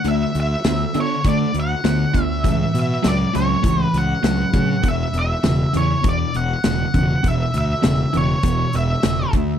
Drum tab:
HH |xxxxxxxx|xxxxxxxx|xxxxxxxx|xxxxxxxx|
SD |--o---o-|--o---o-|--o---o-|--o---o-|
BD |----o--o|o---o--o|o---o--o|o---o--o|